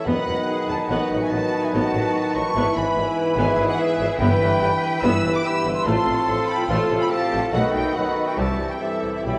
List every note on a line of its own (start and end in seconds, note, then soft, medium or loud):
0.06 0.15 E1 medium
0.06 0.14 E2 loud
0.06 0.90 B2 medium
0.06 0.88 D#3 medium
0.06 2.55 F#3 medium
0.06 2.39 B3 medium
0.06 0.26 B3 medium
0.06 2.39 D#4 loud
0.06 2.56 D#4 medium
0.06 2.54 B4 medium
0.06 0.47 B4 medium
0.06 0.89 B4 medium
0.06 0.68 D#5 loud
0.06 0.69 F#5 loud
0.06 0.67 F#5 medium
0.27 0.35 E1 medium
0.27 0.35 E2 medium
0.27 0.36 D#3 medium
0.47 0.89 G#4 medium
0.68 0.77 E1 medium
0.68 0.77 E2 medium
0.68 0.78 D#3 medium
0.68 0.90 F#5 medium
0.68 0.90 A5 loud
0.68 0.77 A5 loud
0.89 0.98 A1 loud
0.89 2.55 A2 medium
0.89 1.31 D#3 medium
0.89 1.10 B3 loud
0.89 1.72 F#4 medium
0.89 1.31 B4 medium
0.89 1.22 D#5 loud
0.89 1.21 F#5 medium
0.89 1.21 F#5 loud
1.11 1.19 A1 medium
1.11 1.20 A1 medium
1.11 1.20 F#3 medium
1.21 1.32 E5 medium
1.21 1.32 G#5 medium
1.21 1.32 G#5 loud
1.31 1.40 A1 medium
1.31 1.73 D#3 medium
1.31 1.40 A3 medium
1.31 1.73 B4 medium
1.31 1.63 F#5 loud
1.31 1.62 A5 loud
1.31 1.63 A5 loud
1.63 1.74 E5 medium
1.63 1.73 G#5 medium
1.63 1.74 G#5 loud
1.73 1.81 A1 loud
1.73 2.58 D#3 medium
1.73 1.93 B3 medium
1.73 2.54 F#4 loud
1.73 2.54 B4 medium
1.73 2.35 F#5 loud
1.73 2.35 A5 loud
1.73 2.34 A5 loud
1.93 2.02 A1 medium
1.93 2.02 F#3 medium
2.35 2.43 A1 medium
2.35 2.43 F#3 medium
2.35 2.75 A5 loud
2.35 2.75 C#6 loud
2.35 2.76 C#6 loud
2.54 2.63 G#1 loud
2.54 2.64 G#1 loud
2.54 4.02 G#2 loud
2.54 4.02 E3 loud
2.54 3.37 E3 medium
2.54 2.75 B3 loud
2.54 4.17 B3 loud
2.54 2.95 E4 medium
2.54 5.86 E4 loud
2.54 4.19 E4 loud
2.54 4.16 B4 loud
2.54 3.36 B4 loud
2.76 2.84 G#1 medium
2.76 2.84 E3 medium
2.76 3.38 G#5 loud
2.76 3.37 B5 loud
2.76 3.37 B5 medium
2.96 3.04 G#1 medium
2.96 3.04 G#3 medium
2.96 3.37 E4 medium
3.37 3.45 G#1 loud
3.37 3.46 G#1 loud
3.37 3.78 E3 loud
3.37 3.57 B3 loud
3.37 4.18 G#4 loud
3.37 3.66 B4 loud
3.37 3.68 E5 loud
3.37 3.68 G#5 loud
3.37 3.46 G#5 loud
3.58 3.66 G#1 medium
3.58 3.67 E3 medium
3.67 3.73 D#5 medium
3.67 3.78 F#5 loud
3.67 3.79 F#5 loud
3.78 4.19 E3 medium
3.78 4.18 B4 loud
3.78 4.19 B4 medium
3.78 4.18 E5 loud
3.78 4.20 E5 loud
3.99 4.07 G#1 medium
3.99 4.08 E3 medium
4.19 4.28 G1 loud
4.19 4.98 G2 loud
4.19 4.98 E3 loud
4.19 4.72 E3 medium
4.19 4.39 B3 loud
4.19 4.99 B3 loud
4.19 4.99 E4 loud
4.19 4.59 B4 loud
4.19 4.86 B4 medium
4.19 4.73 B4 loud
4.19 4.81 E5 loud
4.19 5.01 G5 loud
4.40 4.48 G1 medium
4.40 4.49 G1 medium
4.40 4.48 E3 medium
4.61 4.69 G1 medium
4.61 4.70 G1 medium
4.61 4.69 G3 medium
4.61 5.43 B4 loud
5.01 5.11 G1 loud
5.01 5.43 G2 loud
5.01 5.42 E3 medium
5.01 5.42 E3 loud
5.01 5.43 B3 loud
5.01 5.22 B3 loud
5.01 5.44 E4 loud
5.01 5.44 B4 loud
5.01 5.42 B4 loud
5.01 5.10 B5 loud
5.01 5.34 E6 loud
5.24 5.32 G1 medium
5.24 5.32 E3 medium
5.34 5.44 B5 loud
5.34 5.38 D6 loud
5.34 5.45 D6 loud
5.44 5.85 G2 loud
5.44 5.85 E3 medium
5.44 5.88 E3 loud
5.44 5.85 B3 loud
5.44 5.86 E4 loud
5.44 5.85 G4 loud
5.44 5.88 B4 medium
5.44 5.85 B4 medium
5.44 5.75 B5 loud
5.44 5.74 E6 loud
5.44 5.75 E6 loud
5.65 5.73 G1 medium
5.65 5.74 G1 medium
5.65 5.73 E3 medium
5.75 5.85 C6 loud
5.75 5.86 E6 loud
5.84 5.94 A1 loud
5.84 6.68 A2 loud
5.84 6.69 F3 medium
5.84 6.67 A3 loud
5.84 6.05 A3 loud
5.84 6.68 C4 medium
5.84 6.26 F4 medium
5.84 7.49 F4 loud
5.84 6.70 F4 loud
5.84 6.69 A4 loud
5.84 6.49 A5 loud
5.84 6.47 C6 loud
5.84 6.48 C6 loud
6.06 6.15 A1 medium
6.06 6.15 C3 medium
6.27 6.36 A1 medium
6.27 6.37 F3 medium
6.27 6.69 A4 loud
6.48 6.69 G5 loud
6.48 6.70 B5 loud
6.48 6.69 B5 loud
6.69 6.77 A1 loud
6.69 6.78 A1 loud
6.69 7.09 A2 loud
6.69 7.10 F3 loud
6.69 7.09 A3 medium
6.69 6.89 A3 loud
6.69 7.11 C4 medium
6.69 7.10 F4 loud
6.69 7.11 F4 medium
6.69 7.10 A4 medium
6.69 7.01 A5 loud
6.69 7.00 C6 loud
6.69 6.77 C6 loud
6.90 6.99 A1 medium
6.90 6.98 C3 medium
7.00 7.11 G5 loud
7.00 7.04 B5 loud
7.00 7.11 B5 loud
7.10 7.51 A2 medium
7.10 7.55 F3 medium
7.10 7.51 A3 medium
7.10 7.53 C4 medium
7.10 7.52 F4 medium
7.10 7.53 G4 loud
7.10 7.52 A4 medium
7.10 7.53 F5 loud
7.10 7.52 A5 loud
7.32 7.40 A1 medium
7.32 7.41 A1 medium
7.32 7.40 C3 medium
7.52 7.61 B1 loud
7.52 7.94 F#2 medium
7.52 7.95 D#3 medium
7.52 7.94 A3 medium
7.52 7.73 A3 loud
7.52 7.94 B3 medium
7.52 8.36 D#4 medium
7.52 7.94 D#4 medium
7.52 8.78 F#4 medium
7.52 7.94 A4 medium
7.52 7.94 B4 medium
7.52 7.74 D#5 loud
7.52 7.73 F#5 loud
7.52 7.74 F#5 loud
7.72 7.83 B1 medium
7.72 7.82 B1 medium
7.72 7.83 D#3 medium
7.72 7.95 E5 loud
7.72 7.94 G5 medium
7.72 7.94 G5 loud
7.93 8.03 B1 medium
7.93 8.04 B1 medium
7.93 8.37 F#2 medium
7.93 8.40 D#3 medium
7.93 8.05 F#3 medium
7.93 8.37 A3 medium
7.93 8.37 B3 medium
7.93 8.37 D#4 medium
7.93 8.39 A4 medium
7.93 8.37 B4 medium
7.93 8.27 D#5 loud
7.93 8.26 F#5 medium
7.93 8.27 F#5 loud
8.25 8.38 E5 medium
8.25 8.37 G5 medium
8.25 8.38 G5 medium
8.35 8.46 C2 loud
8.35 8.79 G2 medium
8.35 8.80 E3 medium
8.35 8.79 G3 medium
8.35 8.58 G3 medium
8.35 8.79 C4 medium
8.35 9.39 E4 medium
8.35 8.79 E4 medium
8.35 8.80 G4 medium
8.35 8.79 E5 medium
8.35 8.44 F#5 medium
8.35 8.68 A5 medium
8.35 8.70 A5 loud
8.59 8.67 C2 medium
8.59 8.68 C3 medium
8.68 8.75 E5 medium
8.68 8.80 G5 medium
8.68 8.81 G5 loud
8.78 9.02 G2 medium
8.78 9.25 E3 medium
8.78 9.24 G3 medium
8.78 9.25 C4 medium
8.78 9.25 E4 medium
8.78 9.24 G4 medium
8.78 9.24 A4 medium
8.78 8.88 C5 medium
8.78 9.11 E5 medium
8.78 9.14 E5 medium
8.78 9.24 E5 medium
9.02 9.11 C2 medium
9.02 9.26 A2 medium
9.02 9.12 C3 medium
9.12 9.26 C5 medium
9.12 9.24 E5 medium
9.12 9.26 E5 medium
9.23 9.33 B1 medium
9.23 9.34 B1 medium
9.23 9.39 B2 medium
9.23 9.39 E3 medium
9.23 9.39 G3 medium
9.23 9.39 B3 medium
9.23 9.39 E4 medium
9.23 9.39 G4 medium
9.23 9.39 E5 medium
9.23 9.39 G5 loud
9.23 9.39 B5 loud